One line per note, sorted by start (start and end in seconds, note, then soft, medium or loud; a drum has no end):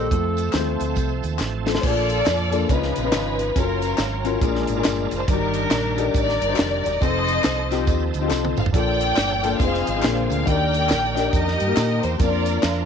0.00 0.54 A4 medium
0.11 0.48 F2 medium
0.11 1.80 F3 medium
0.11 0.41 A3 medium
0.11 1.80 A3 medium
0.11 0.41 C4 medium
0.11 1.80 C4 soft
0.11 0.41 F4 medium
0.11 0.17 G4 medium
0.11 0.42 A4 medium
0.11 kick loud
0.11 closed hi-hat medium
0.11 tambourine medium
0.16 1.82 A4 medium
0.37 closed hi-hat medium
0.37 tambourine medium
0.53 0.77 D#2 loud
0.53 0.60 G#3 medium
0.53 1.08 C4 medium
0.53 1.09 F4 medium
0.53 1.09 C5 medium
0.53 snare medium
0.53 clap medium
0.53 closed hi-hat medium
0.53 tambourine medium
0.59 1.11 A3 medium
0.80 0.95 D2 medium
0.80 closed hi-hat medium
0.80 tambourine medium
0.96 1.20 C2 medium
0.96 kick loud
0.96 closed hi-hat medium
0.96 tambourine medium
1.23 1.38 D#2 medium
1.23 closed hi-hat medium
1.23 tambourine soft
1.39 1.77 A1 medium
1.39 snare medium
1.39 clap medium
1.39 tambourine medium
1.66 1.76 A3 medium
1.66 1.77 C4 medium
1.66 1.77 F4 medium
1.66 1.78 A4 medium
1.66 1.83 C5 medium
1.66 snare medium
1.66 tambourine medium
1.75 snare medium
1.83 2.20 A#1 loud
1.83 2.49 A#2 medium
1.83 2.68 F3 medium
1.83 2.23 A#3 medium
1.83 2.68 A#3 medium
1.83 1.90 C4 soft
1.83 2.23 D4 medium
1.83 2.24 F4 medium
1.83 2.66 F4 medium
1.83 1.90 G#4 medium
1.83 2.68 A4 medium
1.83 2.66 A4 medium
1.83 2.70 D5 loud
1.83 kick loud
1.83 crash loud
1.83 tambourine medium
1.88 2.70 D4 medium
1.88 2.27 A4 medium
2.09 closed hi-hat medium
2.09 tambourine medium
2.26 2.64 F2 loud
2.26 snare loud
2.26 clap medium
2.26 closed hi-hat medium
2.26 tambourine medium
2.51 2.69 A#3 medium
2.51 2.69 D4 medium
2.51 2.69 F4 medium
2.51 2.70 A4 medium
2.51 closed hi-hat medium
2.51 tambourine medium
2.69 2.92 C#2 loud
2.69 3.35 C#3 medium
2.69 3.54 F3 medium
2.69 3.54 C#4 medium
2.69 2.99 C#4 medium
2.69 3.54 D#4 medium
2.69 3.00 D#4 medium
2.69 3.53 D#4 medium
2.69 3.00 F4 medium
2.69 3.53 F4 medium
2.69 2.76 A#4 medium
2.69 3.00 B4 medium
2.69 3.57 B4 loud
2.69 kick loud
2.69 closed hi-hat medium
2.69 tambourine medium
2.74 3.56 B4 medium
2.83 snare soft
2.96 3.11 A#1 medium
2.96 closed hi-hat medium
2.96 tambourine medium
3.03 3.39 C#4 medium
3.03 3.39 D#4 medium
3.03 3.39 F4 medium
3.03 3.40 B4 medium
3.12 3.50 G#1 medium
3.12 snare loud
3.12 clap loud
3.12 closed hi-hat medium
3.12 tambourine medium
3.39 closed hi-hat medium
3.39 tambourine medium
3.55 3.93 F#1 medium
3.55 4.40 F#3 medium
3.55 3.96 F#3 medium
3.55 3.96 C#4 medium
3.55 4.40 C#4 medium
3.55 4.39 C#4 medium
3.55 4.40 F4 medium
3.55 3.96 F4 medium
3.55 4.39 F4 medium
3.55 3.63 A4 medium
3.55 4.40 A#4 medium
3.55 4.43 A#4 medium
3.55 kick loud
3.55 closed hi-hat medium
3.55 tambourine medium
3.62 3.99 A#4 medium
3.82 closed hi-hat medium
3.82 tambourine medium
3.98 4.36 G#1 loud
3.98 snare medium
3.98 clap medium
3.98 closed hi-hat medium
3.98 tambourine medium
4.25 4.42 C#4 medium
4.25 4.41 F4 medium
4.25 4.42 F#4 medium
4.25 4.41 A#4 medium
4.25 closed hi-hat medium
4.25 tambourine medium
4.41 4.64 A#1 loud
4.41 5.08 A#2 medium
4.41 5.27 G#3 medium
4.41 4.72 D4 medium
4.41 5.27 D4 medium
4.41 5.27 F4 medium
4.41 4.72 F4 medium
4.41 4.72 G#4 medium
4.41 5.26 A#4 medium
4.41 4.72 A#4 medium
4.41 kick loud
4.41 closed hi-hat medium
4.41 tambourine medium
4.55 snare soft
4.67 4.83 G#1 loud
4.67 closed hi-hat medium
4.67 tambourine medium
4.76 5.12 D4 medium
4.76 5.12 F4 medium
4.76 5.12 G#4 medium
4.76 5.13 A#4 medium
4.84 5.08 G1 loud
4.84 snare loud
4.84 clap medium
4.84 closed hi-hat medium
4.84 tambourine loud
5.11 5.26 F#1 medium
5.11 closed hi-hat medium
5.11 tambourine medium
5.15 5.29 C5 medium
5.27 5.65 G1 loud
5.27 5.94 G2 medium
5.27 6.97 D#3 medium
5.27 5.68 D#3 medium
5.27 6.97 G3 medium
5.27 6.11 D4 medium
5.27 6.11 D#4 medium
5.27 5.35 F#4 medium
5.27 6.97 A#4 medium
5.27 5.69 A#4 medium
5.27 6.97 D5 medium
5.27 5.68 D5 medium
5.27 kick loud
5.27 closed hi-hat medium
5.27 tambourine medium
5.31 5.71 G4 medium
5.31 6.12 A#4 loud
5.54 closed hi-hat medium
5.54 tambourine medium
5.71 6.08 A#1 loud
5.71 snare loud
5.71 clap medium
5.71 closed hi-hat medium
5.71 tambourine medium
5.97 6.27 D4 medium
5.97 6.28 D#4 medium
5.97 6.28 G4 medium
5.97 6.02 A4 medium
5.97 closed hi-hat medium
5.97 tambourine medium
6.04 6.31 A#4 loud
6.14 6.37 A1 medium
6.14 6.97 A#4 medium
6.14 7.02 D5 loud
6.14 kick loud
6.14 closed hi-hat medium
6.14 tambourine medium
6.29 snare soft
6.41 6.56 G1 medium
6.41 closed hi-hat medium
6.41 tambourine medium
6.48 6.84 D4 medium
6.48 6.84 D#4 medium
6.48 6.53 F#4 medium
6.48 6.85 C5 medium
6.54 6.87 G4 medium
6.54 clap medium
6.54 tambourine medium
6.59 6.81 F1 medium
6.59 snare loud
6.59 closed hi-hat medium
6.84 6.99 E1 medium
6.84 closed hi-hat medium
6.84 tambourine medium
7.00 7.38 F1 loud
7.00 8.70 F3 medium
7.00 7.41 C4 medium
7.00 8.70 C4 medium
7.00 8.70 D#4 medium
7.00 7.41 D#4 medium
7.00 7.42 F4 medium
7.00 7.07 G4 medium
7.00 7.41 A4 medium
7.00 7.84 A4 medium
7.00 7.84 C5 medium
7.00 7.88 D#5 loud
7.00 kick loud
7.00 closed hi-hat medium
7.00 tambourine medium
7.06 8.72 A4 medium
7.27 closed hi-hat medium
7.27 tambourine medium
7.44 7.87 C2 loud
7.44 snare loud
7.44 clap medium
7.44 closed hi-hat medium
7.44 tambourine medium
7.71 8.01 C4 medium
7.71 8.01 D#4 medium
7.71 8.01 F4 medium
7.71 8.02 G4 loud
7.71 snare soft
7.71 closed hi-hat medium
7.71 tambourine medium
7.87 8.10 D#2 medium
7.87 kick loud
7.87 closed hi-hat medium
7.87 tambourine medium
8.14 8.29 D2 medium
8.14 closed hi-hat medium
8.14 tambourine medium
8.21 8.56 C4 medium
8.21 8.57 D#4 medium
8.21 8.57 F4 medium
8.21 8.26 G4 medium
8.28 8.54 C2 medium
8.28 8.60 A4 medium
8.28 snare medium
8.28 clap medium
8.28 tambourine medium
8.45 high tom medium
8.57 8.72 A1 medium
8.57 8.66 F5 medium
8.57 mid tom medium
8.57 tambourine medium
8.66 floor tom medium
8.72 9.11 A#1 loud
8.72 9.40 A#2 medium
8.72 9.57 F3 medium
8.72 9.58 A#3 medium
8.72 9.14 A#3 medium
8.72 9.58 D4 medium
8.72 9.14 D4 medium
8.72 9.14 F4 medium
8.72 9.58 A4 medium
8.72 9.15 A4 medium
8.72 9.57 D5 medium
8.72 9.56 G5 loud
8.72 kick loud
8.72 closed hi-hat medium
8.72 tambourine medium
8.99 closed hi-hat medium
8.99 tambourine medium
9.16 9.54 G1 loud
9.16 snare medium
9.16 clap medium
9.16 closed hi-hat medium
9.16 tambourine medium
9.43 9.60 A#3 medium
9.43 9.60 D4 medium
9.43 9.59 F4 medium
9.43 9.61 A4 loud
9.43 closed hi-hat medium
9.43 tambourine medium
9.58 9.83 F1 medium
9.58 10.03 F3 medium
9.58 10.02 C4 medium
9.58 9.90 C4 medium
9.58 10.03 D#4 medium
9.58 9.90 D#4 medium
9.58 9.91 F4 medium
9.58 10.02 G#4 medium
9.58 9.91 G#4 medium
9.58 10.27 F5 medium
9.58 kick loud
9.58 closed hi-hat medium
9.58 tambourine medium
9.62 10.27 G#4 medium
9.62 10.27 C5 medium
9.74 snare soft
9.86 10.02 G#1 medium
9.86 closed hi-hat medium
9.86 tambourine medium
9.94 10.01 C4 medium
9.94 10.03 D#4 medium
9.94 10.03 F4 medium
9.94 10.02 G#4 medium
10.02 10.27 A#1 loud
10.02 10.44 A#2 medium
10.02 10.46 D3 medium
10.02 10.45 A#3 medium
10.02 10.40 C4 medium
10.02 10.47 C4 medium
10.02 10.40 D4 medium
10.02 10.47 G#4 medium
10.02 10.40 G#4 medium
10.02 10.40 A#4 medium
10.02 snare loud
10.02 clap medium
10.02 closed hi-hat medium
10.02 tambourine medium
10.29 10.44 D2 medium
10.29 10.45 F5 loud
10.29 closed hi-hat medium
10.29 tambourine medium
10.45 10.93 D#2 loud
10.45 11.12 D#3 medium
10.45 12.16 D#3 medium
10.45 12.16 A#3 medium
10.45 10.86 D4 medium
10.45 10.86 D#4 medium
10.45 10.53 F4 medium
10.45 10.53 F#4 medium
10.45 10.87 A#4 medium
10.45 11.30 A#4 medium
10.45 11.30 D5 medium
10.45 11.33 G5 loud
10.45 kick loud
10.45 closed hi-hat medium
10.45 tambourine medium
10.51 12.19 G4 medium
10.51 10.89 G4 medium
10.72 closed hi-hat medium
10.72 tambourine medium
10.89 11.28 A#1 medium
10.89 snare loud
10.89 clap medium
10.89 closed hi-hat medium
10.89 tambourine medium
11.15 11.46 D4 loud
11.15 11.46 D#4 medium
11.15 11.46 G4 medium
11.15 11.47 A#4 loud
11.15 snare soft
11.15 closed hi-hat medium
11.15 tambourine medium
11.33 11.56 F2 medium
11.33 12.17 G4 medium
11.33 12.17 A#4 medium
11.33 12.03 D#5 loud
11.33 kick loud
11.33 closed hi-hat medium
11.33 tambourine medium
11.48 snare soft
11.60 11.75 G2 medium
11.60 closed hi-hat medium
11.60 tambourine soft
11.67 12.03 A#3 medium
11.67 12.03 D#4 medium
11.67 12.03 G4 medium
11.67 12.03 A#4 medium
11.77 11.99 A#2 loud
11.77 snare loud
11.77 clap medium
11.77 closed hi-hat medium
11.77 tambourine medium
12.03 12.18 E2 medium
12.03 12.20 C5 medium
12.03 closed hi-hat medium
12.03 tambourine medium
12.18 12.57 F2 loud
12.18 12.85 F3 medium
12.18 12.59 A#3 medium
12.18 12.85 A#3 medium
12.18 12.26 C#4 medium
12.18 12.85 D4 medium
12.18 12.60 F4 medium
12.18 12.27 A4 medium
12.18 12.60 A#4 medium
12.18 12.60 D5 loud
12.18 kick loud
12.18 closed hi-hat medium
12.18 tambourine medium
12.22 12.62 D4 medium
12.22 12.64 F4 medium
12.22 12.61 A#4 medium
12.22 12.85 A#4 medium
12.46 closed hi-hat medium
12.46 tambourine medium
12.62 12.85 F2 medium
12.62 12.85 D4 medium
12.62 12.85 F4 medium
12.62 12.85 A#4 medium
12.62 snare loud
12.62 clap medium
12.62 closed hi-hat medium
12.62 tambourine medium